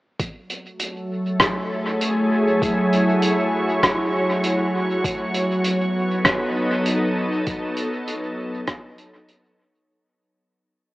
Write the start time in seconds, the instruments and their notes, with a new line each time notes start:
0.19 ambient pad F#3, kick, closed hi-hat
0.50 closed hi-hat
0.57 ambient pad A3
0.75 ambient pad C#5
0.80 closed hi-hat
1.21 ambient pad G#4
1.35 ambient pad E4
1.40 kick, cross-stick, closed hi-hat
2.01 closed hi-hat
2.62 kick, closed hi-hat
2.93 closed hi-hat
3.22 closed hi-hat
3.83 kick, cross-stick, closed hi-hat
4.44 closed hi-hat
5.04 kick, closed hi-hat
5.34 closed hi-hat
5.55 ambient pad B3
5.64 closed hi-hat
5.73 ambient pad A4
5.89 ambient pad D#4
6.25 kick, cross-stick, closed hi-hat
6.86 closed hi-hat
7.46 kick, closed hi-hat
7.77 closed hi-hat
8.08 closed hi-hat
8.67 kick, cross-stick, closed hi-hat
8.98 closed hi-hat
9.28 closed hi-hat